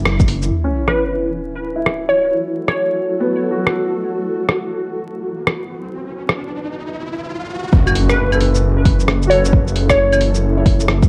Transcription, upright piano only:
0.00 0.69 E4 medium
0.64 1.93 C#4 medium
1.76 3.04 E4 soft
3.20 4.50 B3 medium
3.51 4.79 F#4 medium
7.86 9.14 F#4 medium
8.34 9.31 A4 medium
9.27 10.57 F#4 medium
9.32 10.59 A4 medium
9.37 10.62 B4 medium
10.57 11.09 E4 medium

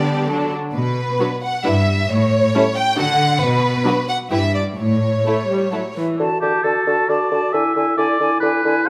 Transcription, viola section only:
0.00 0.27 G3 soft
0.00 0.27 B3 soft
0.29 0.54 F#3 soft
0.29 0.54 D4 soft
1.20 1.28 F#3 soft
1.20 1.28 D4 soft
1.65 1.73 G3 soft
1.65 1.73 D4 soft
2.54 2.62 G3 soft
2.54 2.62 C#4 soft
2.96 3.05 F#3 soft
2.96 3.04 D4 soft
3.86 3.94 F#3 soft
3.86 3.94 D4 soft
4.31 4.39 E3 soft
4.31 4.39 E4 soft
5.25 5.48 A3 soft
5.49 5.72 G3 soft
5.72 5.80 F#3 soft
5.97 6.19 E3 soft

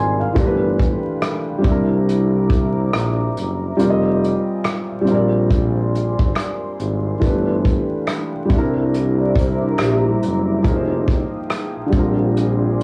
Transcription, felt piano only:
0.00 0.29 G3 medium
0.00 0.31 C4 medium
0.00 0.32 F4 medium
0.00 0.34 A#4 medium
0.00 0.36 D5 medium
0.00 0.19 G#5 medium
0.00 0.38 C6 medium
0.20 0.60 F5 medium
0.34 1.63 E3 medium
0.34 1.64 A3 medium
0.34 1.63 D4 medium
0.38 1.66 G4 medium
0.38 0.46 A#4 medium
0.46 1.70 B4 medium
1.58 3.72 G3 medium
1.58 3.73 C4 medium
1.65 3.75 D4 medium
1.65 3.76 E4 medium
1.71 3.78 A#4 medium
3.77 5.00 G3 medium
3.77 5.03 C4 medium
3.77 5.06 F4 medium
3.82 5.09 A#4 medium
3.82 3.89 D5 medium
3.90 5.13 D#5 medium
5.01 7.15 G3 medium
5.01 7.16 C4 medium
5.08 7.18 F4 medium
5.08 7.19 A#4 medium
5.14 7.21 D5 medium
7.19 8.49 E3 medium
7.19 8.50 A3 medium
7.19 8.50 D4 medium
7.24 8.51 G4 medium
7.24 8.52 B4 medium
8.45 10.58 G3 medium
8.45 10.60 C4 medium
8.52 10.61 D4 medium
8.52 10.63 E4 medium
8.58 10.64 A#4 medium
10.62 11.92 F3 medium
10.62 11.93 A#3 medium
10.62 11.94 D#4 medium
10.67 11.94 G#4 medium
10.67 10.75 A#4 medium
10.75 11.98 C5 medium
11.86 12.83 D3 medium
11.86 12.83 G3 medium
11.93 12.83 C4 medium
11.93 12.83 F4 medium
11.99 12.83 A#4 medium

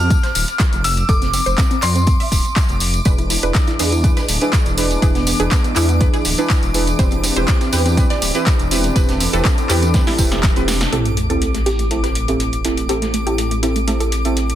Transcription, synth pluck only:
0.10 0.20 C4 medium
0.23 0.99 C5 medium
1.09 1.18 A4 loud
1.22 1.30 C4 medium
1.33 1.43 C4 medium
1.46 1.55 C5 medium
1.58 1.67 C4 medium
1.71 1.79 C4 medium
1.83 1.92 D5 medium
1.95 2.04 C4 medium
2.07 2.16 C4 medium
2.20 2.96 E5 medium
3.06 3.15 B4 loud
3.19 3.27 E4 medium
3.30 3.39 E4 medium
3.43 3.51 B4 medium
3.68 3.76 E4 medium
3.79 3.88 G#4 medium
3.92 4.01 E4 medium
4.04 4.13 E4 medium
4.17 4.93 B4 medium
5.02 5.11 G#4 loud
5.15 5.23 B3 medium
5.27 5.36 B3 medium
5.40 5.48 G#4 medium
5.52 5.61 B3 medium
5.64 5.73 B3 medium
5.76 5.85 E4 loud
5.89 5.97 B3 medium
6.01 6.10 B3 medium
6.14 6.90 G#4 medium
6.99 7.08 C5 loud
7.12 7.20 C4 medium
7.24 7.33 C4 medium
7.36 7.45 C5 medium
7.48 7.57 C4 medium
7.61 7.69 C4 medium
7.73 7.82 B4 loud
7.86 7.94 C4 medium
7.97 8.06 C4 medium
8.10 8.86 D5 medium
8.96 9.05 B4 loud
9.09 9.17 C4 medium
9.20 9.29 C4 medium
9.33 9.42 A4 medium
9.45 9.54 C4 medium
9.58 9.66 C4 medium
9.70 9.79 G4 medium
9.82 9.91 C4 medium
9.94 10.03 C4 medium
10.07 10.83 E4 medium
10.92 11.02 A4 medium
11.05 11.14 A3 medium
11.17 11.26 A3 medium
11.30 11.38 A4 medium
11.42 11.51 A3 medium
11.54 11.63 A3 medium
11.66 11.75 G4 medium
11.79 11.87 A3 medium
11.91 12.00 A3 medium
12.04 12.80 B4 medium
12.89 12.98 G4 medium
13.02 13.10 A3 medium
13.14 13.23 A3 medium
13.27 13.35 G4 medium
13.38 13.47 A3 medium
13.51 13.59 A3 medium
13.63 13.72 E4 medium
13.76 13.84 A3 medium
13.87 13.97 A3 medium
14.00 14.55 A4 medium

